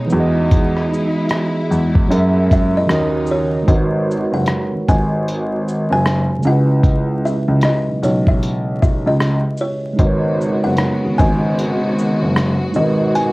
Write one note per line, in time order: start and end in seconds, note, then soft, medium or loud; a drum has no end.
0.00 0.11 B2 medium
0.00 0.10 C#3 medium
0.00 2.85 G#3 medium
0.00 0.10 B3 medium
0.00 0.11 D#4 medium
0.00 0.13 D#4 medium
0.00 0.14 G#4 medium
0.00 0.15 C#5 medium
0.00 2.86 G#5 medium
0.07 2.03 E3 medium
0.07 2.05 B3 medium
0.07 shaker soft
0.12 0.78 E2 loud
0.12 2.08 D#4 medium
0.12 2.86 E4 medium
0.12 2.07 F#4 medium
0.17 2.08 G#4 medium
0.17 2.10 D#5 medium
0.51 kick loud
0.51 closed hi-hat medium
0.77 cross-stick soft
0.94 shaker soft
1.29 cross-stick loud
1.29 closed hi-hat medium
1.71 2.04 E2 medium
1.71 shaker medium
1.95 kick medium
2.08 2.76 F#2 loud
2.08 2.88 A#2 medium
2.08 2.88 F#3 medium
2.08 2.87 C#4 medium
2.08 2.90 G#4 medium
2.08 closed hi-hat medium
2.13 2.90 A#4 medium
2.13 2.91 E5 medium
2.51 2.76 E5 medium
2.51 kick medium
2.51 closed hi-hat medium
2.51 shaker medium
2.77 3.27 D#5 medium
2.87 3.55 D#2 loud
2.87 3.67 C#3 medium
2.87 3.67 D#3 medium
2.87 3.67 F#3 medium
2.87 3.68 C#4 medium
2.87 3.67 D#4 medium
2.87 3.67 F#4 medium
2.87 cross-stick loud
2.91 3.69 A#4 medium
2.91 3.70 D#5 medium
2.91 closed hi-hat medium
3.26 shaker soft
3.31 4.36 C#5 loud
3.63 6.38 G#3 medium
3.63 6.39 D#4 medium
3.68 4.21 G#1 loud
3.68 6.40 F#4 medium
3.68 6.42 A#4 medium
3.68 kick loud
3.68 closed hi-hat medium
3.74 6.43 B4 medium
3.74 6.45 C#5 medium
4.11 shaker soft
4.32 4.44 F#1 medium
4.32 4.89 F#5 medium
4.46 cross-stick loud
4.46 closed hi-hat medium
4.72 4.78 G#1 soft
4.89 5.87 G#1 medium
4.89 5.87 G#5 loud
4.89 kick medium
4.89 closed hi-hat medium
4.89 shaker soft
5.28 closed hi-hat medium
5.68 shaker medium
5.90 6.23 F#1 medium
5.90 6.47 G#5 loud
6.06 cross-stick loud
6.06 closed hi-hat medium
6.39 9.53 C#3 medium
6.39 9.55 G#3 medium
6.43 7.30 C#2 medium
6.43 9.57 C#4 medium
6.43 shaker soft
6.47 9.58 E4 medium
6.47 7.27 F#5 loud
6.52 9.60 B4 medium
6.84 kick loud
6.84 closed hi-hat medium
7.25 7.65 E5 medium
7.25 shaker soft
7.48 7.60 C#2 medium
7.61 8.01 D#5 medium
7.61 cross-stick loud
7.61 closed hi-hat medium
7.88 7.94 B1 soft
8.03 9.06 B1 medium
8.03 8.28 C#5 medium
8.03 closed hi-hat soft
8.03 shaker medium
8.27 8.78 E5 loud
8.27 kick medium
8.43 closed hi-hat medium
8.82 9.07 E5 medium
8.82 kick medium
8.82 shaker medium
9.06 9.39 C#2 medium
9.06 9.63 D#5 medium
9.20 cross-stick loud
9.20 closed hi-hat medium
9.57 10.67 C#5 medium
9.57 shaker soft
9.93 12.69 G#3 medium
9.93 12.70 D#4 medium
9.99 10.52 G#1 loud
9.99 12.73 C#3 medium
9.99 13.32 G#3 medium
9.99 12.73 B3 medium
9.99 12.71 F#4 medium
9.99 13.32 F#4 medium
9.99 12.73 A#4 medium
9.99 kick loud
9.99 closed hi-hat medium
10.04 12.74 B4 medium
10.04 12.75 C#5 medium
10.41 shaker soft
10.64 10.76 F#1 medium
10.64 11.15 F#5 medium
10.77 cross-stick loud
10.77 closed hi-hat medium
11.04 11.10 G#1 soft
11.18 12.22 G#1 loud
11.18 12.81 G#5 loud
11.18 kick medium
11.18 closed hi-hat medium
11.18 shaker soft
11.59 closed hi-hat medium
11.99 shaker medium
12.22 12.54 F#1 medium
12.36 cross-stick loud
12.36 closed hi-hat medium
12.71 13.32 G#3 medium
12.71 13.32 D#4 medium
12.71 shaker soft
12.76 13.32 G#1 medium
12.76 13.32 B2 medium
12.76 13.32 F#4 medium
12.76 13.17 D#5 medium
12.80 13.32 A#4 medium
12.80 13.32 B4 medium
13.15 13.32 G#5 medium
13.15 closed hi-hat medium